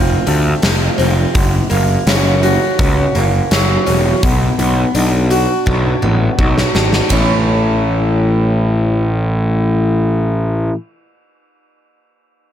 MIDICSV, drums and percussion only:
0, 0, Header, 1, 2, 480
1, 0, Start_track
1, 0, Key_signature, 3, "major"
1, 0, Tempo, 719424
1, 897, Time_signature, 4, 2, 24, 8
1, 8355, End_track
2, 0, Start_track
2, 0, Title_t, "Drums"
2, 180, Note_on_c, 9, 46, 45
2, 247, Note_off_c, 9, 46, 0
2, 419, Note_on_c, 9, 46, 62
2, 422, Note_on_c, 9, 38, 102
2, 486, Note_off_c, 9, 46, 0
2, 489, Note_off_c, 9, 38, 0
2, 663, Note_on_c, 9, 46, 47
2, 730, Note_off_c, 9, 46, 0
2, 901, Note_on_c, 9, 46, 62
2, 902, Note_on_c, 9, 36, 95
2, 968, Note_off_c, 9, 36, 0
2, 968, Note_off_c, 9, 46, 0
2, 1140, Note_on_c, 9, 46, 42
2, 1206, Note_off_c, 9, 46, 0
2, 1381, Note_on_c, 9, 46, 58
2, 1384, Note_on_c, 9, 38, 97
2, 1447, Note_off_c, 9, 46, 0
2, 1451, Note_off_c, 9, 38, 0
2, 1624, Note_on_c, 9, 46, 45
2, 1690, Note_off_c, 9, 46, 0
2, 1861, Note_on_c, 9, 46, 57
2, 1863, Note_on_c, 9, 36, 102
2, 1928, Note_off_c, 9, 46, 0
2, 1929, Note_off_c, 9, 36, 0
2, 2103, Note_on_c, 9, 46, 39
2, 2170, Note_off_c, 9, 46, 0
2, 2344, Note_on_c, 9, 46, 60
2, 2347, Note_on_c, 9, 38, 94
2, 2411, Note_off_c, 9, 46, 0
2, 2414, Note_off_c, 9, 38, 0
2, 2583, Note_on_c, 9, 46, 45
2, 2650, Note_off_c, 9, 46, 0
2, 2822, Note_on_c, 9, 46, 62
2, 2823, Note_on_c, 9, 36, 88
2, 2889, Note_off_c, 9, 46, 0
2, 2890, Note_off_c, 9, 36, 0
2, 3062, Note_on_c, 9, 46, 46
2, 3129, Note_off_c, 9, 46, 0
2, 3302, Note_on_c, 9, 46, 60
2, 3369, Note_off_c, 9, 46, 0
2, 3543, Note_on_c, 9, 46, 47
2, 3610, Note_off_c, 9, 46, 0
2, 3782, Note_on_c, 9, 36, 92
2, 3849, Note_off_c, 9, 36, 0
2, 4022, Note_on_c, 9, 47, 54
2, 4089, Note_off_c, 9, 47, 0
2, 4261, Note_on_c, 9, 36, 70
2, 4328, Note_off_c, 9, 36, 0
2, 4388, Note_on_c, 9, 38, 56
2, 4455, Note_off_c, 9, 38, 0
2, 4502, Note_on_c, 9, 38, 74
2, 4569, Note_off_c, 9, 38, 0
2, 4622, Note_on_c, 9, 38, 67
2, 4688, Note_off_c, 9, 38, 0
2, 4737, Note_on_c, 9, 51, 73
2, 4740, Note_on_c, 9, 36, 60
2, 4804, Note_off_c, 9, 51, 0
2, 4806, Note_off_c, 9, 36, 0
2, 8355, End_track
0, 0, End_of_file